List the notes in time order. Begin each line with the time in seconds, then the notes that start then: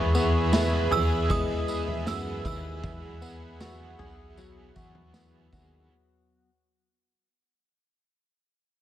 Already playing: E2 E3 G#3 B3 E4 G#4 B4 E5 B5 C#6
0.13 B3 E4 G#4, tambourine
0.52 E3 G#3 B3 E4 G#4, snare, tambourine
0.90 E2 B3 E4 G#4 E6, floor tom
1.28 G#3 B3 E4 G#4 D#6, kick, floor tom, tambourine
1.67 B3 E4 G#4, tambourine
1.88 floor tom
2.06 F#2 E3 G#3 B3 E4 G#4 E6, snare, tambourine
2.44 D#2 B3 E4 G#4 E6, kick, floor tom, tambourine
2.83 E2 E3 F#3 B3 E4 G#4 F#5, kick, floor tom, tambourine
3.22 B3 E4 G#4, tambourine
3.60 E3 F#3 B3 E4 F#4 G#4, snare, tambourine
3.99 B1 B3 E4 G#4, floor tom
4.37 F#3 B3 E4 G#4, tambourine
4.75 E2 B3 E4 F#4 G#4, kick, tambourine
4.95 floor tom
5.14 E3 F#3 B3 E4 G#4, snare, tambourine
5.52 D#2 B3 E4 F#4 G#4, kick, floor tom, tambourine